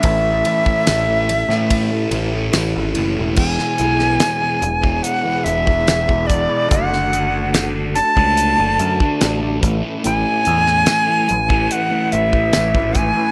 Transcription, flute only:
\new Staff \with { instrumentName = "Flute" } { \time 4/4 \key e \mixolydian \tempo 4 = 72 e''2. r4 | gis''2 fis''8 e''4 d''8 | fis''4 r8 a''2 r8 | gis''2 fis''8 e''4 gis''8 | }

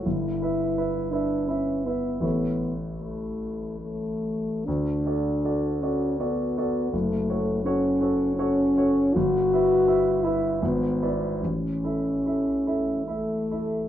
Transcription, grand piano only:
\new Staff \with { instrumentName = "Grand piano" } { \time 3/4 \key a \mixolydian \tempo 4 = 79 g,,8 <e' b' e''>8 <e' b' e''>8 <e' b' e''>8 <e' b' e''>8 <e' b' e''>8 | <a,, e' a' cis''>2. | d,8 <fis' a' d''>8 <fis' a' d''>8 <fis' a' d''>8 <fis' a' d''>8 <fis' a' d''>8 | fis,,8 <fis' a' cis''>8 <fis' a' cis''>8 <fis' a' cis''>8 <fis' a' cis''>8 <fis' a' cis''>8 |
g,,8 <e' b' e''>8 <e' b' e''>8 <e' b' e''>8 gis,,8 <e' b' d''>8 | a,,8 <e' a' e''>8 <e' a' e''>8 <e' a' e''>8 <e' a' e''>8 <e' a' e''>8 | }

